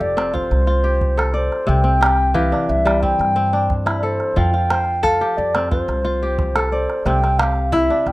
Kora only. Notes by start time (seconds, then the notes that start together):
Already playing: F3 F4 G4 A4 C5
0.17 C4
0.34 F4
0.67 F4
0.84 G4
1.17 A4
1.34 D5
1.67 C3 C4
1.84 C4
2.01 G4
2.34 E3 G4
2.52 D4
2.85 G3
3.03 C4
3.36 C4
3.53 D4
3.86 E4
4.03 A4
4.36 F3 F4
4.53 F4
4.71 C5
5.03 A4
5.21 G4
5.55 C4
5.71 F4
6.05 F4
6.23 G4
6.56 A4
6.72 D5
7.06 C3 C4
7.24 C4
7.39 G4
7.73 E4
7.90 D4